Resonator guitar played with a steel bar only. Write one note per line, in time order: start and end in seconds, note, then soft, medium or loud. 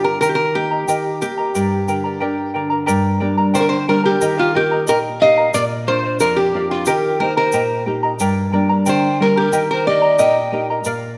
0.04 0.20 A#4 medium
0.21 0.28 A#4 medium
0.29 0.36 G4 medium
0.35 0.53 A#4 medium
0.55 1.18 G4 medium
1.22 2.51 G4 medium
3.55 3.62 C5 medium
3.60 3.68 A#4 medium
3.69 3.89 C5 medium
3.89 4.05 A#4 medium
4.05 4.39 G4 medium
4.39 4.56 F4 medium
4.56 4.89 G4 medium
4.89 4.98 A#4 loud
5.22 5.52 D#5 loud
5.54 5.63 D5 loud
5.88 6.18 C5 loud
6.20 6.37 A#4 medium
6.36 6.71 G4 medium
6.71 6.86 F4 medium
6.87 7.21 G4 medium
7.20 7.35 A#4 medium
7.37 7.83 A#4 medium
8.89 9.22 C5 medium
9.22 9.38 A#4 medium
9.37 9.68 G4 medium
9.71 9.86 A#4 medium
9.87 10.18 D5 medium
10.19 10.66 D#5 medium